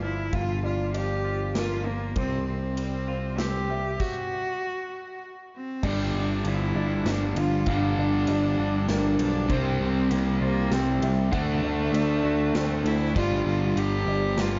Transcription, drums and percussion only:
0.33 kick medium
0.33 ride soft
0.94 ride soft
1.55 snare medium
1.55 ride soft
2.16 kick medium
2.16 ride medium
2.77 ride medium
3.39 snare medium
3.39 ride soft
4.00 kick medium
4.00 crash medium
5.83 kick loud
5.83 crash medium
6.45 ride medium
7.06 snare medium
7.06 ride medium
7.36 ride medium
7.66 kick medium
7.66 ride medium
8.27 ride medium
8.89 snare medium
8.89 ride medium
9.19 ride medium
9.50 kick medium
9.50 ride medium
10.11 ride medium
10.72 snare medium
10.72 ride medium
11.02 ride medium
11.33 kick loud
11.33 ride medium
11.94 ride medium
12.55 snare medium
12.55 ride medium
12.86 ride medium
13.16 kick loud
13.16 ride medium
13.77 ride medium
14.38 snare medium
14.38 ride medium

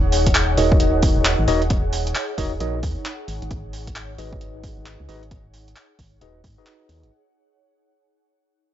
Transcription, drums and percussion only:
0.12 open hi-hat loud
0.27 kick medium
0.27 closed hi-hat medium
0.35 clap loud
0.35 closed hi-hat medium
0.57 open hi-hat medium
0.72 kick loud
0.80 closed hi-hat medium
1.02 kick loud
1.02 open hi-hat medium
1.25 clap loud
1.25 closed hi-hat medium
1.48 open hi-hat medium
1.62 closed hi-hat soft
1.70 kick loud
1.70 closed hi-hat medium
1.93 open hi-hat loud
2.07 closed hi-hat medium
2.15 clap loud
2.15 closed hi-hat medium
2.38 kick medium
2.38 open hi-hat medium
2.60 closed hi-hat medium
2.83 kick loud
2.83 open hi-hat loud
3.06 clap loud
3.06 closed hi-hat medium
3.28 open hi-hat medium
3.42 closed hi-hat soft
3.51 kick loud
3.51 closed hi-hat medium
3.73 open hi-hat loud
3.87 kick medium
3.87 closed hi-hat medium
3.96 clap loud
3.96 closed hi-hat medium
4.18 open hi-hat medium
4.33 kick loud
4.41 closed hi-hat medium
4.64 kick medium
4.64 open hi-hat loud
4.86 clap loud
4.86 closed hi-hat medium
5.09 open hi-hat medium
5.23 closed hi-hat soft
5.31 kick loud
5.31 closed hi-hat medium
5.54 open hi-hat loud
5.68 closed hi-hat medium
5.76 clap loud
5.76 closed hi-hat medium
5.99 kick medium
5.99 open hi-hat medium
6.21 closed hi-hat medium
6.44 kick loud
6.44 open hi-hat loud
6.66 clap loud
6.66 closed hi-hat medium
6.89 open hi-hat medium
7.03 closed hi-hat soft

